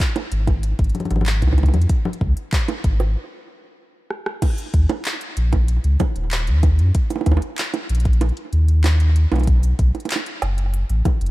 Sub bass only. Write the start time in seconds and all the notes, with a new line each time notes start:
0.32 G#1
0.79 G#1
1.10 G#1
1.42 C#2
1.74 F2
2.21 C#2
2.84 G#1
4.74 D#2
5.37 A#1
5.84 C#2
6.16 D#1
6.47 D#2
6.79 F#2
7.26 D#2
7.89 A#1
8.53 D#2
9.32 B1
9.79 B1
10.42 F#1
10.90 A1
11.21 F#1